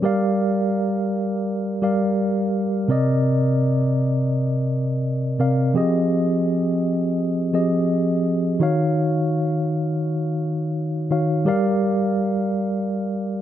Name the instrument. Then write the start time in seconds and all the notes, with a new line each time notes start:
tine electric piano
0.02 G3 G4 A#4 D5 F5
1.82 G3 G4 A#4 D5 F5
2.88 C3 C4 A#4 D5 D#5
5.39 C3 C4 A#4 D5 F5
5.74 F3 C4 G4 G#4 D#5
7.53 F3 C4 G4 G#4 D#5
8.60 D#3 D#4 F#4 C#5 F5
11.10 D#3 D#4 F#4 C#5 F5
11.45 G3 G4 A#4 D5 F5